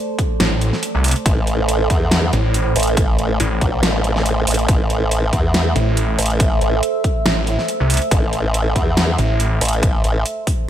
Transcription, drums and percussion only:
0.19 kick, closed hi-hat
0.40 snare, closed hi-hat
0.61 closed hi-hat
0.73 snare
0.83 closed hi-hat
1.04 closed hi-hat, open hi-hat
1.11 closed hi-hat
1.26 kick, closed hi-hat
1.47 closed hi-hat
1.69 closed hi-hat
1.90 kick, closed hi-hat
2.11 snare, closed hi-hat
2.33 closed hi-hat
2.54 closed hi-hat
2.76 closed hi-hat, open hi-hat
2.83 closed hi-hat
2.87 closed hi-hat
2.97 kick, closed hi-hat
3.19 closed hi-hat
3.40 closed hi-hat
3.61 kick, closed hi-hat
3.83 snare, closed hi-hat
4.04 closed hi-hat
4.16 snare
4.26 closed hi-hat
4.47 closed hi-hat, open hi-hat
4.54 closed hi-hat
4.59 closed hi-hat
4.68 kick, closed hi-hat
4.90 closed hi-hat
5.11 closed hi-hat
5.33 kick, closed hi-hat
5.54 snare, closed hi-hat
5.76 closed hi-hat
5.97 closed hi-hat
6.19 closed hi-hat, open hi-hat
6.26 closed hi-hat
6.30 closed hi-hat
6.40 kick, closed hi-hat
6.61 closed hi-hat
6.83 closed hi-hat
7.04 kick, closed hi-hat
7.26 snare, closed hi-hat
7.47 closed hi-hat
7.59 snare
7.68 closed hi-hat
7.90 closed hi-hat, open hi-hat
7.97 closed hi-hat
8.02 closed hi-hat
8.11 kick, closed hi-hat
8.33 closed hi-hat
8.54 closed hi-hat
8.76 kick, closed hi-hat
8.97 snare, closed hi-hat
9.19 closed hi-hat
9.40 closed hi-hat
9.61 closed hi-hat, open hi-hat
9.68 closed hi-hat
9.73 closed hi-hat
9.83 kick, closed hi-hat
10.04 closed hi-hat
10.26 closed hi-hat
10.47 kick, open hi-hat

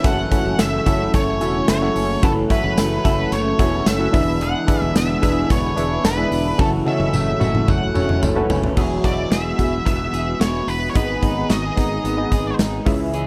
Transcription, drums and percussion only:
0.04 kick, closed hi-hat, tambourine
0.32 kick, closed hi-hat
0.59 snare, closed hi-hat, tambourine
0.86 kick, closed hi-hat, tambourine
1.14 kick, closed hi-hat, tambourine
1.41 closed hi-hat, tambourine
1.68 snare, closed hi-hat, tambourine
1.96 open hi-hat, tambourine
2.23 kick, closed hi-hat
2.50 kick, closed hi-hat
2.77 snare, closed hi-hat, tambourine
3.05 kick, closed hi-hat, tambourine
3.32 closed hi-hat, tambourine
3.59 kick, closed hi-hat, tambourine
3.86 snare, closed hi-hat, tambourine
4.14 kick, open hi-hat, tambourine
4.41 closed hi-hat
4.68 kick, closed hi-hat, tambourine
4.95 snare, closed hi-hat, tambourine
5.23 kick, closed hi-hat, tambourine
5.50 kick, closed hi-hat, tambourine
5.77 closed hi-hat, tambourine
6.05 snare, closed hi-hat, tambourine
6.32 open hi-hat, tambourine
6.59 kick, high tom, tambourine
6.87 high tom
7.00 high tom
7.14 mid tom, tambourine
7.41 mid tom, tambourine
7.55 mid tom
7.68 kick, mid tom, tambourine
7.95 mid tom, tambourine
8.09 mid tom
8.23 floor tom, tambourine
8.50 floor tom, tambourine
8.63 floor tom
8.77 kick, crash, tambourine
9.04 kick, closed hi-hat, tambourine
9.31 snare, closed hi-hat, tambourine
9.59 kick, closed hi-hat, tambourine
9.86 kick, closed hi-hat, tambourine
10.14 closed hi-hat, tambourine
10.41 snare, closed hi-hat, tambourine
10.68 open hi-hat, tambourine
10.95 kick, closed hi-hat
11.23 kick, closed hi-hat
11.50 snare, closed hi-hat, tambourine
11.77 kick, closed hi-hat, tambourine
12.05 closed hi-hat, tambourine
12.32 kick, closed hi-hat, tambourine
12.59 snare, closed hi-hat, tambourine
12.86 kick, open hi-hat, tambourine
13.14 closed hi-hat, tambourine

